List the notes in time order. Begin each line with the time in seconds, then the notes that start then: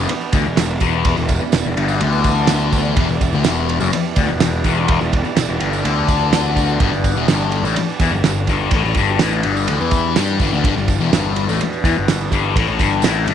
Already playing: E2 B2 D3 E3 G3 B3 D4 E4 G4 D5
0.09 muted distorted electric guitar stroke, muted picked electric bass stroke, ride
0.21 tambourine
0.33 D2 D3 E3, kick, ride, tambourine
0.45 E1 E2
0.56 E1 E2, snare, ride, tambourine
0.69 tambourine
0.80 E1 E2, kick, ride, tambourine
0.93 tambourine
1.00 E2
1.05 kick, ride, tambourine
1.17 E1 E2, tambourine
1.28 kick, ride, tambourine
1.40 muted distorted electric guitar stroke, muted picked electric bass stroke, tambourine
1.52 E1 E2, snare, ride, tambourine
1.61 B2, tambourine
1.65 E1 E2
1.77 G1 G2, ride, tambourine
1.88 tambourine
2.00 D2 D3, ride, tambourine
2.12 tambourine
2.24 E3, kick, ride, tambourine
2.47 snare, ride, tambourine
2.61 tambourine
2.72 kick, ride, tambourine
2.85 E3, tambourine
2.96 E1 E2, kick, ride, tambourine
3.09 E1 E2, tambourine
3.21 kick, ride, tambourine
3.33 D2 D3, tambourine
3.44 E1 E2, snare, ride, tambourine
3.57 tambourine
3.68 ride, tambourine
3.80 F#1 F#2, tambourine
3.93 muted distorted electric guitar stroke, muted picked electric bass stroke, ride, tambourine
4.05 tambourine
4.10 B2
4.16 D2 D3, kick, ride, tambourine
4.29 E1 E2
4.40 E1 E2, snare, ride, tambourine
4.53 tambourine
4.64 E1 E2, kick, ride, tambourine
4.72 E3
4.76 tambourine
4.88 kick, ride, tambourine
5.01 E1 E2, tambourine
5.13 kick, ride
5.24 muted distorted electric guitar stroke, muted picked electric bass stroke, tambourine
5.35 E1 E2 E3, snare, ride, tambourine
5.49 E1 E2, tambourine
5.60 G1 G2, ride, tambourine
5.73 tambourine
5.84 D2 D3, ride, tambourine
5.94 E2
6.08 kick, ride, tambourine
6.21 tambourine
6.33 snare, ride, tambourine
6.46 tambourine
6.56 B2, kick, ride, tambourine
6.69 tambourine
6.80 G1 G2, kick, ride, tambourine
6.91 G1 G2, tambourine
7.04 kick, ride, tambourine
7.16 E1 E2 E3, tambourine
7.27 G1 G2, snare, ride, tambourine
7.41 tambourine
7.52 ride, tambourine
7.63 A1 A2, tambourine
7.75 muted picked electric bass stroke, muted distorted electric guitar stroke, ride
7.79 E3
7.89 tambourine
8.00 E2 E3, kick, ride, tambourine
8.11 G1 G2
8.23 G1 G2, snare, ride, tambourine
8.38 tambourine
8.43 E2
8.47 G1 G2, kick, ride, tambourine
8.61 tambourine
8.71 A1 A2, kick, ride, tambourine
8.84 A1 A2, tambourine
8.95 G1 G2, kick, ride, tambourine
9.05 B2, tambourine
9.19 A1 A2, snare, ride, tambourine
9.33 tambourine
9.43 G1 G2, ride, tambourine
9.57 tambourine
9.68 D2 D3 E3, ride, tambourine
9.81 E2 E3, tambourine
9.91 kick, ride, tambourine
10.16 G2 G3, snare, ride, tambourine
10.29 E3, tambourine
10.40 G1 G2, kick, ride, tambourine
10.52 D2 D3, tambourine
10.64 G1 G2, kick, ride, tambourine
10.76 G1 G2, tambourine
10.88 E2, kick, ride, tambourine
11.00 E1 E2, tambourine
11.12 G1 G2, snare, ride, tambourine
11.36 ride, tambourine
11.49 A1 A2, tambourine
11.53 B2
11.61 muted distorted electric guitar stroke, muted picked electric bass stroke, ride, tambourine
11.73 tambourine
11.84 E2 E3, kick, ride, tambourine
11.97 G1 G2
12.08 G1 G2, snare, ride, tambourine
12.15 E3
12.21 tambourine
12.32 G1 G2, kick, ride, tambourine
12.44 tambourine
12.56 A1 A2, kick, ride, tambourine
12.67 A1 A2, tambourine
12.77 G1 G2 E3, kick, ride, tambourine
12.92 tambourine
13.02 A1 A2, snare, ride, tambourine
13.15 tambourine
13.27 G1 G2, ride, tambourine